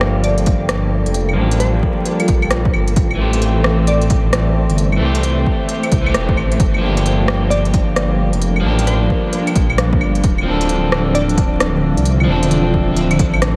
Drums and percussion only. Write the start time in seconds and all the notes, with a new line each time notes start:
0.01 cross-stick
0.24 closed hi-hat
0.38 closed hi-hat
0.46 kick, closed hi-hat
0.69 cross-stick, closed hi-hat
1.06 closed hi-hat
1.14 closed hi-hat
1.29 claves
1.51 closed hi-hat
1.60 closed hi-hat
1.83 kick
2.05 closed hi-hat
2.20 closed hi-hat, claves
2.28 kick, closed hi-hat
2.42 claves
2.51 cross-stick, closed hi-hat
2.65 kick
2.74 claves
2.88 closed hi-hat
2.96 kick, closed hi-hat
3.11 claves
3.33 closed hi-hat
3.42 closed hi-hat
3.64 cross-stick
3.87 closed hi-hat
4.01 closed hi-hat
4.10 kick, closed hi-hat
4.33 cross-stick, closed hi-hat
4.70 closed hi-hat
4.78 closed hi-hat
4.92 claves
5.15 closed hi-hat
5.23 closed hi-hat
5.46 kick
5.69 closed hi-hat
5.83 closed hi-hat, claves
5.92 kick, closed hi-hat
6.06 claves
6.14 cross-stick, closed hi-hat
6.29 kick
6.37 claves
6.52 closed hi-hat
6.60 kick, closed hi-hat
6.74 claves
6.97 closed hi-hat
7.06 closed hi-hat
7.28 cross-stick
7.51 closed hi-hat
7.65 closed hi-hat
7.74 kick, closed hi-hat
7.96 cross-stick, closed hi-hat
8.33 closed hi-hat
8.42 closed hi-hat
8.56 claves
8.79 closed hi-hat
8.87 closed hi-hat
9.10 kick
9.33 closed hi-hat
9.47 closed hi-hat, claves
9.56 kick, closed hi-hat
9.70 claves
9.78 cross-stick, closed hi-hat
9.93 kick
10.01 claves
10.15 closed hi-hat
10.24 kick, closed hi-hat
10.38 claves
10.61 closed hi-hat
10.69 closed hi-hat
10.92 cross-stick
11.15 closed hi-hat
11.29 closed hi-hat
11.38 kick, closed hi-hat
11.60 cross-stick, closed hi-hat
11.97 closed hi-hat
12.06 closed hi-hat
12.20 claves
12.43 closed hi-hat
12.51 closed hi-hat
12.74 kick
12.96 closed hi-hat
13.11 closed hi-hat, claves
13.19 kick, closed hi-hat
13.34 claves
13.42 cross-stick, closed hi-hat